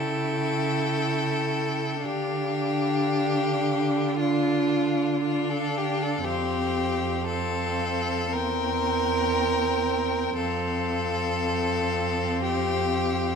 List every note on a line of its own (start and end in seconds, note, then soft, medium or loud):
0.00 2.06 C#3 soft
0.00 2.02 E4 soft
0.00 2.07 A4 medium
0.00 2.04 G5 soft
2.04 6.25 D3 soft
2.04 4.16 D4 soft
2.04 4.19 G4 medium
2.04 4.16 F5 soft
4.18 5.22 D4 soft
4.18 5.22 F4 medium
4.18 5.21 F5 soft
5.23 6.24 D4 soft
5.23 5.51 F4 medium
5.23 6.24 F5 soft
5.50 5.79 A4 medium
5.77 6.04 G4 medium
6.03 6.27 A4 medium
6.25 8.36 F2 soft
6.25 7.26 C4 soft
6.25 7.26 G4 medium
6.25 7.26 F5 soft
7.27 8.32 C4 soft
7.27 8.34 A4 medium
7.27 8.37 F5 soft
8.32 10.37 E2 soft
8.32 10.34 C4 medium
8.32 10.36 A#4 medium
8.32 10.38 G5 soft
10.37 13.35 F2 medium
10.37 13.35 C4 soft
10.37 12.38 A4 medium
10.37 13.35 F5 soft
12.43 13.35 G4 medium